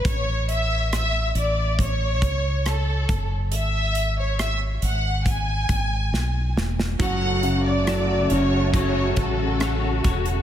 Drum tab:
HH |x-x-x-x-x-x-x-x-|x-x-x-x-x-x-----|x-x-x-x-x-x-x-xx|
SD |----r-------r---|----r-------o-oo|----r-------r---|
BD |o-------o-o---o-|--------o-o-----|o-------o-o---o-|